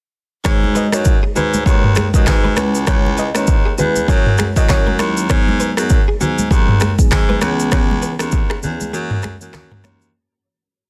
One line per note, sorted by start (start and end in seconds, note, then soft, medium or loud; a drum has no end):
0.45 0.87 G#2 loud
0.45 0.88 G#3 medium
0.45 0.88 D#4 medium
0.45 0.89 F#4 medium
0.45 0.89 B4 loud
0.45 0.55 C#5 medium
0.45 0.60 C#5 loud
0.45 finger snap medium
0.45 kick loud
0.45 cross-stick loud
0.45 low conga medium
0.45 shaker medium
0.64 high conga medium
0.75 0.85 B4 medium
0.75 0.91 D#5 medium
0.75 high conga medium
0.75 shaker medium
0.92 1.19 F#2 medium
0.92 1.12 G#3 medium
0.92 1.12 D#4 medium
0.92 1.12 F#4 medium
0.92 1.12 B4 medium
0.92 1.04 C#5 medium
0.92 finger snap medium
0.92 cross-stick medium
0.92 shaker medium
1.05 kick loud
1.05 shaker medium
1.23 1.30 G#4 medium
1.35 1.62 G#2 medium
1.35 1.58 G#3 medium
1.35 1.58 D#4 medium
1.35 1.58 F#4 medium
1.35 1.46 F#4 medium
1.35 1.58 B4 medium
1.35 1.51 B4 medium
1.35 low conga medium
1.35 shaker soft
1.54 high conga medium
1.54 shaker medium
1.65 2.08 D#2 loud
1.65 1.88 G#3 medium
1.65 1.88 D#4 medium
1.65 1.89 F#4 medium
1.65 1.76 G#4 medium
1.65 1.89 B4 loud
1.65 1.82 C#5 loud
1.65 kick loud
1.65 shaker medium
1.84 mid tom medium
1.95 2.06 G#4 medium
1.95 finger snap medium
1.95 cross-stick medium
1.95 high conga medium
1.95 shaker medium
2.14 2.25 F#2 medium
2.14 2.54 G#3 medium
2.14 2.54 D#4 medium
2.14 2.54 F#4 medium
2.14 2.54 B4 medium
2.14 2.26 D#5 medium
2.14 kick medium
2.14 shaker medium
2.27 2.53 G#2 loud
2.27 2.72 B4 medium
2.27 finger snap medium
2.27 kick medium
2.27 cross-stick loud
2.27 clap loud
2.27 low conga medium
2.27 shaker medium
2.44 2.51 B4 medium
2.44 high conga medium
2.57 2.83 C#2 medium
2.57 2.85 G#3 medium
2.57 2.85 C#4 medium
2.57 2.85 E4 medium
2.57 2.85 B4 medium
2.57 2.67 C#5 medium
2.57 finger snap medium
2.57 cross-stick loud
2.57 high conga medium
2.57 shaker medium
2.75 shaker medium
2.87 3.29 C#2 loud
2.87 3.31 G#3 medium
2.87 3.31 C#4 medium
2.87 3.31 E4 medium
2.87 3.31 B4 loud
2.87 2.97 C#5 loud
2.87 3.03 C#5 loud
2.87 finger snap medium
2.87 kick loud
2.87 cross-stick loud
2.87 low conga medium
2.87 shaker medium
3.06 high conga medium
3.18 3.28 B4 medium
3.18 3.33 D#5 medium
3.18 high conga medium
3.18 shaker medium
3.35 3.73 D#2 medium
3.35 3.55 G#3 medium
3.35 3.55 C#4 medium
3.35 3.55 E4 medium
3.35 3.55 B4 medium
3.35 3.47 C#5 medium
3.35 finger snap medium
3.35 cross-stick medium
3.35 shaker medium
3.47 kick loud
3.47 shaker medium
3.66 3.73 G#4 medium
3.78 4.05 E2 medium
3.78 4.01 G#3 medium
3.78 4.01 C#4 medium
3.78 4.01 E4 medium
3.78 3.88 F#4 medium
3.78 4.01 B4 medium
3.78 3.94 B4 medium
3.78 low conga medium
3.78 shaker soft
3.96 high conga medium
3.96 shaker medium
4.08 4.50 F#2 loud
4.08 4.31 F#3 medium
4.08 4.31 C#4 medium
4.08 4.31 E4 medium
4.08 4.18 G#4 medium
4.08 4.31 A#4 medium
4.08 4.24 C#5 medium
4.08 kick loud
4.08 shaker medium
4.26 mid tom medium
4.38 4.49 G#4 medium
4.38 finger snap medium
4.38 cross-stick medium
4.38 high conga medium
4.38 shaker medium
4.56 4.67 F#2 medium
4.56 4.96 F#3 medium
4.56 4.96 C#4 medium
4.56 4.96 E4 medium
4.56 4.96 A#4 medium
4.56 4.68 D#5 medium
4.56 kick loud
4.56 shaker medium
4.69 4.96 F#2 loud
4.69 4.84 C#5 medium
4.69 finger snap medium
4.69 kick medium
4.69 cross-stick loud
4.69 clap loud
4.69 low conga medium
4.69 shaker medium
4.87 4.94 A#4 medium
4.87 high conga medium
4.99 5.26 D#2 loud
4.99 5.28 F#3 medium
4.99 5.28 C#4 medium
4.99 5.28 E4 medium
4.99 5.28 A#4 medium
4.99 5.15 A#4 medium
4.99 5.09 C#5 medium
4.99 finger snap medium
4.99 cross-stick loud
4.99 high conga medium
4.99 shaker medium
5.17 shaker medium
5.29 5.72 G#2 loud
5.29 5.73 F#3 loud
5.29 5.73 B3 medium
5.29 5.73 D#4 medium
5.29 5.74 G#4 loud
5.29 5.40 C#5 loud
5.29 finger snap medium
5.29 kick loud
5.29 cross-stick loud
5.29 low conga medium
5.29 shaker medium
5.49 high conga medium
5.60 5.70 B4 medium
5.60 high conga medium
5.60 shaker medium
5.77 6.04 F#2 loud
5.77 5.97 F#3 medium
5.77 5.97 B3 medium
5.77 5.97 D#4 medium
5.77 5.98 G#4 medium
5.77 finger snap medium
5.77 cross-stick medium
5.77 shaker medium
5.90 kick loud
5.90 shaker medium
6.08 6.15 G#4 medium
6.20 6.47 G#2 medium
6.20 6.43 F#3 medium
6.20 6.43 B3 medium
6.20 6.43 D#4 medium
6.20 6.31 F#4 medium
6.20 6.43 G#4 medium
6.20 low conga medium
6.20 shaker soft
6.38 high conga medium
6.38 shaker medium
6.51 6.93 D#2 loud
6.51 6.73 F#3 medium
6.51 6.74 B3 medium
6.51 6.74 D#4 medium
6.51 6.61 G#4 medium
6.51 6.74 G#4 loud
6.51 kick loud
6.51 shaker medium
6.68 mid tom loud
6.80 6.91 G#4 medium
6.80 finger snap medium
6.80 cross-stick medium
6.80 high conga medium
6.80 shaker medium
6.99 7.39 F#3 medium
6.99 7.39 B3 medium
6.99 7.39 D#4 medium
6.99 7.39 G#4 medium
6.99 kick medium
6.99 shaker medium
7.11 7.38 G#2 medium
7.11 finger snap medium
7.11 kick medium
7.11 cross-stick loud
7.11 clap loud
7.11 low conga medium
7.11 shaker medium
7.29 7.36 B4 medium
7.29 high conga medium
7.41 7.68 C#2 loud
7.41 7.70 E3 medium
7.41 7.70 B3 medium
7.41 7.70 C#4 medium
7.41 7.70 G#4 medium
7.41 7.52 C#5 medium
7.41 finger snap medium
7.41 cross-stick loud
7.41 high conga medium
7.41 shaker medium
7.60 shaker medium
7.72 8.14 C#2 loud
7.72 8.16 E3 medium
7.72 8.16 B3 medium
7.72 8.16 C#4 medium
7.72 8.16 G#4 loud
7.72 7.82 C#5 loud
7.72 finger snap medium
7.72 kick loud
7.72 cross-stick loud
7.72 low conga medium
7.72 shaker medium
7.91 high conga medium
8.02 8.12 B4 medium
8.02 high conga medium
8.02 shaker medium
8.19 8.58 D#2 medium
8.19 8.39 E3 medium
8.19 8.40 B3 medium
8.19 8.40 C#4 medium
8.19 8.40 G#4 medium
8.19 finger snap medium
8.19 cross-stick medium
8.19 shaker medium
8.32 kick loud
8.32 shaker medium
8.50 8.63 G#4 medium
8.50 finger snap medium
8.50 cross-stick loud
8.63 8.90 E2 medium
8.63 8.85 E3 medium
8.63 8.86 B3 medium
8.63 8.86 C#4 medium
8.63 8.73 F#4 medium
8.63 8.86 G#4 medium
8.63 low conga medium
8.63 shaker soft
8.81 high conga medium
8.81 shaker medium
8.93 9.35 F#2 loud
8.93 9.16 E3 medium
8.93 9.16 A#3 medium
8.93 9.16 C#4 medium
8.93 9.16 F#4 loud
8.93 9.03 G#4 medium
8.93 shaker medium
9.11 mid tom medium
9.22 9.33 G#4 medium
9.22 finger snap medium
9.22 cross-stick medium
9.22 high conga medium
9.22 shaker medium
9.41 9.52 F#2 medium
9.41 9.81 E3 medium
9.41 9.81 A#3 medium
9.41 9.81 C#4 medium
9.41 9.81 F#4 medium
9.41 shaker medium
9.54 9.81 F#2 loud
9.54 finger snap medium
9.54 cross-stick loud
9.54 clap loud
9.54 low conga medium
9.54 shaker medium
9.71 9.79 A#4 medium
9.71 mid tom loud
9.71 high conga medium
9.84 10.11 D#2 medium
9.84 10.12 E3 medium
9.84 10.12 A#3 medium
9.84 10.13 C#4 medium
9.84 10.13 F#4 medium
9.84 9.94 C#5 medium
9.84 finger snap medium
9.84 cross-stick medium
9.84 high conga medium
9.84 shaker medium
10.02 shaker medium